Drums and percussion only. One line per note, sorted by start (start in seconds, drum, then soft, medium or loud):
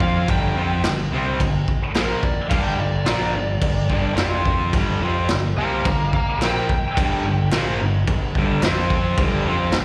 0.00 kick medium
0.28 kick loud
0.28 crash medium
0.84 snare loud
0.84 clap medium
0.84 crash medium
1.40 kick loud
1.40 crash medium
1.68 kick medium
1.95 snare loud
1.95 clap loud
1.95 crash medium
2.23 kick medium
2.51 kick loud
2.51 crash medium
3.06 snare loud
3.06 clap medium
3.06 crash medium
3.61 kick loud
3.61 crash medium
3.90 kick medium
4.17 snare loud
4.17 clap medium
4.17 crash medium
4.45 kick medium
4.73 kick loud
4.73 crash medium
5.29 snare loud
5.29 clap medium
5.29 crash medium
5.85 kick loud
5.85 crash medium
6.13 kick medium
6.42 snare loud
6.42 clap medium
6.42 crash medium
6.69 kick medium
6.97 kick loud
6.97 crash medium
7.52 snare loud
7.52 clap medium
7.52 crash medium
8.07 kick loud
8.07 crash medium
8.35 kick medium
8.63 snare loud
8.63 clap medium
8.63 crash medium
8.90 kick medium
9.18 kick loud
9.18 crash medium
9.72 snare loud
9.72 clap medium
9.72 crash medium